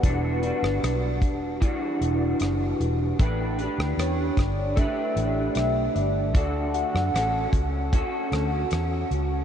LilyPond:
<<
  \new Staff \with { instrumentName = "Soft synth lead" } { \time 4/4 \key d \major \tempo 4 = 76 b'2~ b'8 r4. | r4 cis''8 d''8 e''4 e''8 d''8 | d''8 fis''4. r2 | }
  \new Staff \with { instrumentName = "Clean electric guitar" } { \time 4/4 \key d \major <e g d' fis'>8 <g d' fis'>4. <e g d' fis'>2 | <a d' g' b'>8 <d' g' b'>4. <a d' g' b'>2 | <d fis' a'>4 <cis' fis' a'>4 <cis' fis' a'>2 | }
  \new Staff \with { instrumentName = "Fingered electric bass" } { \clef bass \time 4/4 \key d \major e,,8. g,,16 b,,8 e,,8. r16 e,,8 fis,,8 e,,8 | a,,8. d,16 e,8 g,,8. r16 a,,8 b,,8 g,,8 | d,8. fis,16 a,,8 cis,8. r16 d,8 e,8 cis,8 | }
  \new DrumStaff \with { instrumentName = "Drums" } \drummode { \time 4/4 <hh bd>8 hh16 ss16 <hh ss>8 <hh bd>8 <hh bd>8 hh8 <hh ss>8 hh8 | <hh bd>8 hh16 ss16 <hh ss>8 <hh bd ss>8 <hh bd>8 hh8 <hh ss>8 hh8 | <hh bd>8 hh16 ss16 <hh ss>8 <hh bd>8 <hh bd>8 <hh ss>8 <hh ss>8 hh8 | }
>>